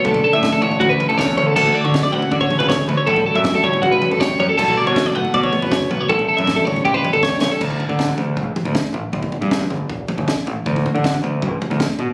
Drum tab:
CC |----------------|x---------------|----------------|x---------------|
SD |----o-------o---|----o-------o---|----o-------o---|----o-------o---|
T2 |-----o----o-o-o-|-----o----o-o-o-|-----o----o-o-o-|-----o----o-o-o-|
FT |oo-oo-oooo-o----|oo-oo-oooo-o----|oo-oo-oooo-o----|oo-oo-oooo-o----|
BD |o---o---o---o---|o---o---o---o---|o---o---o---o---|o---o---o---o---|

CC |----------------|x---------------|----------------|----------------|
SD |----o-------o-o-|----o-------o---|----o-------o---|----o-------o---|
T2 |-----o----o-----|-----oo---o-o---|-----oo---o-o---|-----oo---o-o---|
FT |oo-oo-oooo-o----|ooooo---o-oo--o-|oooooo--o-oo--o-|ooooo---o-oo--o-|
BD |o---o---o---o---|o---o---o---o---|o---o---o---o---|o---o---o---o---|